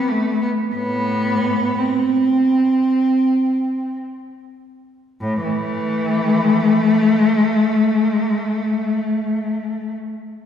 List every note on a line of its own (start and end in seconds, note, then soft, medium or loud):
0.10 0.41 A3 medium
0.41 0.49 B3 medium
0.75 1.73 A2 medium
0.75 1.75 B3 medium
1.78 3.97 C4 medium
5.21 5.44 A2 medium
5.44 7.02 E3 medium
5.44 9.92 A3 medium